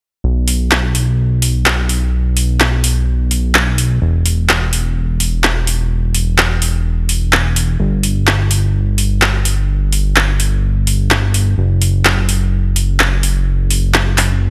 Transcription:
0, 0, Header, 1, 3, 480
1, 0, Start_track
1, 0, Tempo, 472441
1, 245, Time_signature, 4, 2, 24, 8
1, 14732, End_track
2, 0, Start_track
2, 0, Title_t, "Analog synth bass"
2, 0, Program_c, 0, 38
2, 245, Note_on_c, 0, 35, 84
2, 4062, Note_off_c, 0, 35, 0
2, 4084, Note_on_c, 0, 28, 85
2, 7901, Note_off_c, 0, 28, 0
2, 7923, Note_on_c, 0, 31, 88
2, 11741, Note_off_c, 0, 31, 0
2, 11764, Note_on_c, 0, 30, 85
2, 14732, Note_off_c, 0, 30, 0
2, 14732, End_track
3, 0, Start_track
3, 0, Title_t, "Drums"
3, 484, Note_on_c, 9, 46, 97
3, 585, Note_off_c, 9, 46, 0
3, 724, Note_on_c, 9, 39, 112
3, 825, Note_off_c, 9, 39, 0
3, 964, Note_on_c, 9, 46, 93
3, 1066, Note_off_c, 9, 46, 0
3, 1445, Note_on_c, 9, 46, 93
3, 1546, Note_off_c, 9, 46, 0
3, 1684, Note_on_c, 9, 39, 119
3, 1786, Note_off_c, 9, 39, 0
3, 1924, Note_on_c, 9, 46, 95
3, 2026, Note_off_c, 9, 46, 0
3, 2404, Note_on_c, 9, 46, 102
3, 2506, Note_off_c, 9, 46, 0
3, 2643, Note_on_c, 9, 39, 110
3, 2745, Note_off_c, 9, 39, 0
3, 2883, Note_on_c, 9, 46, 104
3, 2985, Note_off_c, 9, 46, 0
3, 3363, Note_on_c, 9, 46, 99
3, 3465, Note_off_c, 9, 46, 0
3, 3603, Note_on_c, 9, 39, 118
3, 3704, Note_off_c, 9, 39, 0
3, 3843, Note_on_c, 9, 46, 104
3, 3944, Note_off_c, 9, 46, 0
3, 4324, Note_on_c, 9, 46, 106
3, 4425, Note_off_c, 9, 46, 0
3, 4564, Note_on_c, 9, 39, 110
3, 4665, Note_off_c, 9, 39, 0
3, 4804, Note_on_c, 9, 46, 99
3, 4905, Note_off_c, 9, 46, 0
3, 5285, Note_on_c, 9, 46, 96
3, 5386, Note_off_c, 9, 46, 0
3, 5523, Note_on_c, 9, 39, 114
3, 5625, Note_off_c, 9, 39, 0
3, 5764, Note_on_c, 9, 46, 105
3, 5866, Note_off_c, 9, 46, 0
3, 6244, Note_on_c, 9, 46, 104
3, 6345, Note_off_c, 9, 46, 0
3, 6484, Note_on_c, 9, 39, 108
3, 6585, Note_off_c, 9, 39, 0
3, 6724, Note_on_c, 9, 46, 105
3, 6826, Note_off_c, 9, 46, 0
3, 7204, Note_on_c, 9, 46, 98
3, 7305, Note_off_c, 9, 46, 0
3, 7444, Note_on_c, 9, 39, 110
3, 7545, Note_off_c, 9, 39, 0
3, 7684, Note_on_c, 9, 46, 105
3, 7786, Note_off_c, 9, 46, 0
3, 8163, Note_on_c, 9, 46, 97
3, 8265, Note_off_c, 9, 46, 0
3, 8404, Note_on_c, 9, 39, 111
3, 8505, Note_off_c, 9, 39, 0
3, 8643, Note_on_c, 9, 46, 101
3, 8745, Note_off_c, 9, 46, 0
3, 9124, Note_on_c, 9, 46, 94
3, 9226, Note_off_c, 9, 46, 0
3, 9364, Note_on_c, 9, 39, 107
3, 9466, Note_off_c, 9, 39, 0
3, 9604, Note_on_c, 9, 46, 99
3, 9706, Note_off_c, 9, 46, 0
3, 10084, Note_on_c, 9, 46, 93
3, 10186, Note_off_c, 9, 46, 0
3, 10324, Note_on_c, 9, 39, 105
3, 10426, Note_off_c, 9, 39, 0
3, 10564, Note_on_c, 9, 46, 94
3, 10666, Note_off_c, 9, 46, 0
3, 11045, Note_on_c, 9, 46, 94
3, 11147, Note_off_c, 9, 46, 0
3, 11284, Note_on_c, 9, 39, 106
3, 11385, Note_off_c, 9, 39, 0
3, 11525, Note_on_c, 9, 46, 96
3, 11626, Note_off_c, 9, 46, 0
3, 12005, Note_on_c, 9, 46, 96
3, 12106, Note_off_c, 9, 46, 0
3, 12243, Note_on_c, 9, 39, 105
3, 12345, Note_off_c, 9, 39, 0
3, 12484, Note_on_c, 9, 46, 94
3, 12585, Note_off_c, 9, 46, 0
3, 12965, Note_on_c, 9, 46, 92
3, 13066, Note_off_c, 9, 46, 0
3, 13204, Note_on_c, 9, 39, 109
3, 13305, Note_off_c, 9, 39, 0
3, 13444, Note_on_c, 9, 46, 96
3, 13546, Note_off_c, 9, 46, 0
3, 13925, Note_on_c, 9, 46, 97
3, 14026, Note_off_c, 9, 46, 0
3, 14164, Note_on_c, 9, 39, 112
3, 14266, Note_off_c, 9, 39, 0
3, 14405, Note_on_c, 9, 39, 58
3, 14405, Note_on_c, 9, 46, 96
3, 14506, Note_off_c, 9, 39, 0
3, 14507, Note_off_c, 9, 46, 0
3, 14732, End_track
0, 0, End_of_file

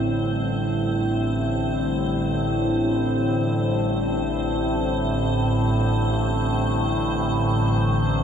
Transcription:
0, 0, Header, 1, 4, 480
1, 0, Start_track
1, 0, Key_signature, 0, "minor"
1, 0, Tempo, 500000
1, 7906, End_track
2, 0, Start_track
2, 0, Title_t, "Ambient pad"
2, 0, Program_c, 0, 92
2, 0, Note_on_c, 0, 60, 83
2, 0, Note_on_c, 0, 72, 74
2, 7906, Note_off_c, 0, 60, 0
2, 7906, Note_off_c, 0, 72, 0
2, 7906, End_track
3, 0, Start_track
3, 0, Title_t, "Analog synth pad"
3, 0, Program_c, 1, 89
3, 0, Note_on_c, 1, 45, 80
3, 0, Note_on_c, 1, 50, 68
3, 0, Note_on_c, 1, 55, 80
3, 0, Note_on_c, 1, 60, 74
3, 0, Note_on_c, 1, 64, 65
3, 7906, Note_off_c, 1, 45, 0
3, 7906, Note_off_c, 1, 50, 0
3, 7906, Note_off_c, 1, 55, 0
3, 7906, Note_off_c, 1, 60, 0
3, 7906, Note_off_c, 1, 64, 0
3, 7906, End_track
4, 0, Start_track
4, 0, Title_t, "Synth drone"
4, 0, Program_c, 2, 95
4, 0, Note_on_c, 2, 33, 77
4, 0, Note_on_c, 2, 45, 75
4, 7906, Note_off_c, 2, 33, 0
4, 7906, Note_off_c, 2, 45, 0
4, 7906, End_track
0, 0, End_of_file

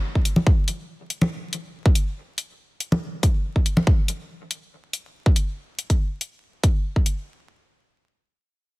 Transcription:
0, 0, Header, 1, 2, 480
1, 0, Start_track
1, 0, Tempo, 425532
1, 523, Time_signature, 4, 2, 24, 8
1, 9923, End_track
2, 0, Start_track
2, 0, Title_t, "Drums"
2, 173, Note_on_c, 9, 36, 59
2, 284, Note_on_c, 9, 42, 75
2, 286, Note_off_c, 9, 36, 0
2, 397, Note_off_c, 9, 42, 0
2, 407, Note_on_c, 9, 64, 69
2, 520, Note_off_c, 9, 64, 0
2, 525, Note_on_c, 9, 36, 119
2, 637, Note_off_c, 9, 36, 0
2, 764, Note_on_c, 9, 42, 75
2, 877, Note_off_c, 9, 42, 0
2, 1243, Note_on_c, 9, 42, 73
2, 1356, Note_off_c, 9, 42, 0
2, 1371, Note_on_c, 9, 64, 76
2, 1484, Note_off_c, 9, 64, 0
2, 1724, Note_on_c, 9, 42, 70
2, 1836, Note_off_c, 9, 42, 0
2, 2093, Note_on_c, 9, 36, 105
2, 2203, Note_on_c, 9, 42, 72
2, 2206, Note_off_c, 9, 36, 0
2, 2316, Note_off_c, 9, 42, 0
2, 2683, Note_on_c, 9, 42, 75
2, 2795, Note_off_c, 9, 42, 0
2, 3163, Note_on_c, 9, 42, 70
2, 3276, Note_off_c, 9, 42, 0
2, 3294, Note_on_c, 9, 64, 81
2, 3407, Note_off_c, 9, 64, 0
2, 3645, Note_on_c, 9, 36, 96
2, 3645, Note_on_c, 9, 42, 67
2, 3758, Note_off_c, 9, 36, 0
2, 3758, Note_off_c, 9, 42, 0
2, 4014, Note_on_c, 9, 36, 56
2, 4126, Note_off_c, 9, 36, 0
2, 4126, Note_on_c, 9, 42, 72
2, 4239, Note_off_c, 9, 42, 0
2, 4249, Note_on_c, 9, 64, 78
2, 4362, Note_off_c, 9, 64, 0
2, 4365, Note_on_c, 9, 36, 113
2, 4478, Note_off_c, 9, 36, 0
2, 4605, Note_on_c, 9, 42, 74
2, 4718, Note_off_c, 9, 42, 0
2, 5084, Note_on_c, 9, 42, 71
2, 5197, Note_off_c, 9, 42, 0
2, 5566, Note_on_c, 9, 42, 70
2, 5679, Note_off_c, 9, 42, 0
2, 5934, Note_on_c, 9, 36, 92
2, 6047, Note_off_c, 9, 36, 0
2, 6047, Note_on_c, 9, 42, 69
2, 6159, Note_off_c, 9, 42, 0
2, 6526, Note_on_c, 9, 42, 80
2, 6639, Note_off_c, 9, 42, 0
2, 6654, Note_on_c, 9, 36, 55
2, 6654, Note_on_c, 9, 42, 36
2, 6767, Note_off_c, 9, 36, 0
2, 6767, Note_off_c, 9, 42, 0
2, 7005, Note_on_c, 9, 42, 71
2, 7118, Note_off_c, 9, 42, 0
2, 7485, Note_on_c, 9, 36, 90
2, 7485, Note_on_c, 9, 42, 72
2, 7598, Note_off_c, 9, 36, 0
2, 7598, Note_off_c, 9, 42, 0
2, 7853, Note_on_c, 9, 36, 55
2, 7964, Note_on_c, 9, 42, 75
2, 7966, Note_off_c, 9, 36, 0
2, 8077, Note_off_c, 9, 42, 0
2, 9923, End_track
0, 0, End_of_file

